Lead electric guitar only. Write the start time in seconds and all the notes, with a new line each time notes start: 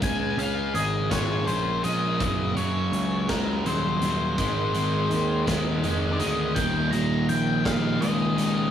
0.03 G#5
0.39 F5
0.76 D#5
1.11 C#5
1.47 C5
1.84 D#5
2.57 C#5
3.29 A#4
3.65 C5
6.12 D5
6.19 D#5
6.55 G5
6.91 A#5
7.29 G5
7.66 F5
8.01 D#5